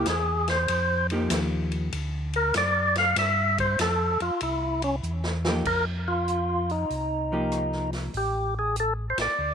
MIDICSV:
0, 0, Header, 1, 5, 480
1, 0, Start_track
1, 0, Tempo, 621118
1, 531, Time_signature, 4, 2, 24, 8
1, 7374, End_track
2, 0, Start_track
2, 0, Title_t, "Tonewheel organ"
2, 0, Program_c, 0, 16
2, 75, Note_on_c, 0, 68, 84
2, 376, Note_off_c, 0, 68, 0
2, 384, Note_on_c, 0, 72, 84
2, 827, Note_off_c, 0, 72, 0
2, 1823, Note_on_c, 0, 70, 97
2, 1970, Note_off_c, 0, 70, 0
2, 1989, Note_on_c, 0, 74, 91
2, 2291, Note_off_c, 0, 74, 0
2, 2304, Note_on_c, 0, 77, 105
2, 2450, Note_off_c, 0, 77, 0
2, 2463, Note_on_c, 0, 76, 93
2, 2768, Note_off_c, 0, 76, 0
2, 2782, Note_on_c, 0, 72, 86
2, 2929, Note_off_c, 0, 72, 0
2, 2946, Note_on_c, 0, 69, 85
2, 3249, Note_off_c, 0, 69, 0
2, 3261, Note_on_c, 0, 65, 90
2, 3408, Note_off_c, 0, 65, 0
2, 3422, Note_on_c, 0, 64, 75
2, 3727, Note_off_c, 0, 64, 0
2, 3740, Note_on_c, 0, 61, 101
2, 3831, Note_off_c, 0, 61, 0
2, 4380, Note_on_c, 0, 70, 97
2, 4522, Note_off_c, 0, 70, 0
2, 4697, Note_on_c, 0, 65, 92
2, 5187, Note_off_c, 0, 65, 0
2, 5188, Note_on_c, 0, 63, 71
2, 6109, Note_off_c, 0, 63, 0
2, 6315, Note_on_c, 0, 67, 80
2, 6603, Note_off_c, 0, 67, 0
2, 6636, Note_on_c, 0, 68, 80
2, 6771, Note_off_c, 0, 68, 0
2, 6800, Note_on_c, 0, 69, 84
2, 6905, Note_off_c, 0, 69, 0
2, 7033, Note_on_c, 0, 72, 61
2, 7099, Note_off_c, 0, 72, 0
2, 7122, Note_on_c, 0, 74, 76
2, 7374, Note_off_c, 0, 74, 0
2, 7374, End_track
3, 0, Start_track
3, 0, Title_t, "Hollow-body jazz guitar"
3, 0, Program_c, 1, 26
3, 861, Note_on_c, 1, 53, 68
3, 863, Note_on_c, 1, 58, 65
3, 866, Note_on_c, 1, 63, 72
3, 872, Note_on_c, 1, 67, 75
3, 1461, Note_off_c, 1, 53, 0
3, 1463, Note_off_c, 1, 58, 0
3, 1464, Note_off_c, 1, 63, 0
3, 1467, Note_off_c, 1, 67, 0
3, 4219, Note_on_c, 1, 53, 72
3, 4220, Note_on_c, 1, 58, 70
3, 4226, Note_on_c, 1, 63, 72
3, 4226, Note_on_c, 1, 67, 78
3, 4356, Note_off_c, 1, 53, 0
3, 4356, Note_off_c, 1, 58, 0
3, 4359, Note_off_c, 1, 63, 0
3, 4359, Note_off_c, 1, 67, 0
3, 5657, Note_on_c, 1, 53, 53
3, 5663, Note_on_c, 1, 58, 56
3, 5663, Note_on_c, 1, 63, 60
3, 5669, Note_on_c, 1, 67, 65
3, 6260, Note_off_c, 1, 53, 0
3, 6263, Note_off_c, 1, 58, 0
3, 6263, Note_off_c, 1, 63, 0
3, 6266, Note_off_c, 1, 67, 0
3, 7374, End_track
4, 0, Start_track
4, 0, Title_t, "Tonewheel organ"
4, 0, Program_c, 2, 16
4, 51, Note_on_c, 2, 40, 86
4, 516, Note_off_c, 2, 40, 0
4, 531, Note_on_c, 2, 41, 88
4, 996, Note_off_c, 2, 41, 0
4, 1007, Note_on_c, 2, 39, 89
4, 1473, Note_off_c, 2, 39, 0
4, 1488, Note_on_c, 2, 38, 80
4, 1953, Note_off_c, 2, 38, 0
4, 1969, Note_on_c, 2, 42, 88
4, 2433, Note_off_c, 2, 42, 0
4, 2443, Note_on_c, 2, 43, 92
4, 2910, Note_off_c, 2, 43, 0
4, 2929, Note_on_c, 2, 41, 90
4, 3228, Note_off_c, 2, 41, 0
4, 3250, Note_on_c, 2, 41, 44
4, 3329, Note_off_c, 2, 41, 0
4, 3408, Note_on_c, 2, 36, 76
4, 3873, Note_off_c, 2, 36, 0
4, 3887, Note_on_c, 2, 40, 90
4, 4352, Note_off_c, 2, 40, 0
4, 4370, Note_on_c, 2, 41, 82
4, 5298, Note_off_c, 2, 41, 0
4, 5330, Note_on_c, 2, 36, 72
4, 6259, Note_off_c, 2, 36, 0
4, 6289, Note_on_c, 2, 33, 79
4, 7061, Note_off_c, 2, 33, 0
4, 7093, Note_on_c, 2, 33, 41
4, 7172, Note_off_c, 2, 33, 0
4, 7252, Note_on_c, 2, 38, 67
4, 7374, Note_off_c, 2, 38, 0
4, 7374, End_track
5, 0, Start_track
5, 0, Title_t, "Drums"
5, 44, Note_on_c, 9, 44, 56
5, 44, Note_on_c, 9, 51, 64
5, 46, Note_on_c, 9, 38, 74
5, 121, Note_off_c, 9, 44, 0
5, 121, Note_off_c, 9, 51, 0
5, 123, Note_off_c, 9, 38, 0
5, 368, Note_on_c, 9, 51, 53
5, 370, Note_on_c, 9, 38, 61
5, 445, Note_off_c, 9, 51, 0
5, 448, Note_off_c, 9, 38, 0
5, 527, Note_on_c, 9, 51, 73
5, 604, Note_off_c, 9, 51, 0
5, 850, Note_on_c, 9, 51, 49
5, 927, Note_off_c, 9, 51, 0
5, 1005, Note_on_c, 9, 44, 70
5, 1005, Note_on_c, 9, 51, 80
5, 1007, Note_on_c, 9, 38, 82
5, 1082, Note_off_c, 9, 44, 0
5, 1082, Note_off_c, 9, 51, 0
5, 1084, Note_off_c, 9, 38, 0
5, 1326, Note_on_c, 9, 51, 44
5, 1403, Note_off_c, 9, 51, 0
5, 1487, Note_on_c, 9, 51, 64
5, 1565, Note_off_c, 9, 51, 0
5, 1804, Note_on_c, 9, 51, 46
5, 1881, Note_off_c, 9, 51, 0
5, 1963, Note_on_c, 9, 44, 51
5, 1963, Note_on_c, 9, 51, 66
5, 1965, Note_on_c, 9, 38, 69
5, 2040, Note_off_c, 9, 44, 0
5, 2040, Note_off_c, 9, 51, 0
5, 2042, Note_off_c, 9, 38, 0
5, 2283, Note_on_c, 9, 51, 54
5, 2286, Note_on_c, 9, 38, 51
5, 2361, Note_off_c, 9, 51, 0
5, 2363, Note_off_c, 9, 38, 0
5, 2444, Note_on_c, 9, 51, 80
5, 2446, Note_on_c, 9, 38, 42
5, 2521, Note_off_c, 9, 51, 0
5, 2524, Note_off_c, 9, 38, 0
5, 2769, Note_on_c, 9, 51, 49
5, 2770, Note_on_c, 9, 36, 65
5, 2846, Note_off_c, 9, 51, 0
5, 2847, Note_off_c, 9, 36, 0
5, 2928, Note_on_c, 9, 44, 68
5, 2928, Note_on_c, 9, 51, 77
5, 2930, Note_on_c, 9, 38, 77
5, 3005, Note_off_c, 9, 44, 0
5, 3005, Note_off_c, 9, 51, 0
5, 3007, Note_off_c, 9, 38, 0
5, 3248, Note_on_c, 9, 51, 45
5, 3325, Note_off_c, 9, 51, 0
5, 3405, Note_on_c, 9, 51, 65
5, 3482, Note_off_c, 9, 51, 0
5, 3726, Note_on_c, 9, 51, 52
5, 3803, Note_off_c, 9, 51, 0
5, 3889, Note_on_c, 9, 44, 48
5, 3966, Note_off_c, 9, 44, 0
5, 4048, Note_on_c, 9, 38, 66
5, 4125, Note_off_c, 9, 38, 0
5, 4209, Note_on_c, 9, 38, 96
5, 4286, Note_off_c, 9, 38, 0
5, 4369, Note_on_c, 9, 36, 69
5, 4369, Note_on_c, 9, 49, 67
5, 4447, Note_off_c, 9, 36, 0
5, 4447, Note_off_c, 9, 49, 0
5, 4851, Note_on_c, 9, 42, 53
5, 4929, Note_off_c, 9, 42, 0
5, 5174, Note_on_c, 9, 46, 35
5, 5251, Note_off_c, 9, 46, 0
5, 5335, Note_on_c, 9, 46, 38
5, 5413, Note_off_c, 9, 46, 0
5, 5809, Note_on_c, 9, 42, 42
5, 5811, Note_on_c, 9, 37, 54
5, 5886, Note_off_c, 9, 42, 0
5, 5888, Note_off_c, 9, 37, 0
5, 5970, Note_on_c, 9, 38, 25
5, 6048, Note_off_c, 9, 38, 0
5, 6127, Note_on_c, 9, 46, 36
5, 6129, Note_on_c, 9, 38, 39
5, 6204, Note_off_c, 9, 46, 0
5, 6206, Note_off_c, 9, 38, 0
5, 6290, Note_on_c, 9, 46, 45
5, 6367, Note_off_c, 9, 46, 0
5, 6769, Note_on_c, 9, 42, 51
5, 6846, Note_off_c, 9, 42, 0
5, 7093, Note_on_c, 9, 51, 61
5, 7095, Note_on_c, 9, 38, 74
5, 7170, Note_off_c, 9, 51, 0
5, 7172, Note_off_c, 9, 38, 0
5, 7374, End_track
0, 0, End_of_file